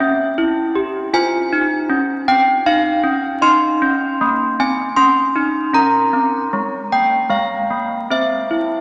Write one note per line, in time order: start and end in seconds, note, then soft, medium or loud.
0.00 0.30 C#4 medium
0.00 1.10 C5 medium
0.00 0.35 E5 loud
0.38 0.68 E4 medium
0.75 1.06 G4 medium
1.14 1.44 F4 medium
1.14 3.41 C5 medium
1.14 2.24 G#5 loud
1.53 1.83 D#4 medium
1.90 2.20 C#4 medium
2.28 2.59 C4 medium
2.28 2.65 G5 loud
2.66 2.97 D#4 medium
2.66 3.42 F5 loud
3.04 3.36 C#4 medium
3.41 3.74 D#4 medium
3.41 5.69 D#5 soft
3.41 4.55 C6 loud
3.82 4.13 C#4 medium
4.21 4.52 A#3 medium
4.60 4.90 C4 medium
4.60 4.97 G#5 loud
4.96 5.28 C#4 medium
4.96 5.71 C6 loud
5.36 5.67 D#4 medium
5.73 6.05 C#4 medium
5.73 8.07 A#4 soft
5.73 6.87 A#5 loud
6.13 6.44 C4 medium
6.53 6.84 G#3 medium
6.92 7.23 A#3 medium
6.92 7.30 G5 loud
7.29 7.62 G#3 medium
7.29 8.08 F5 medium
7.70 8.03 A#3 medium
8.10 8.43 C4 medium
8.10 8.81 C5 soft
8.10 8.81 E5 medium
8.51 8.81 E4 medium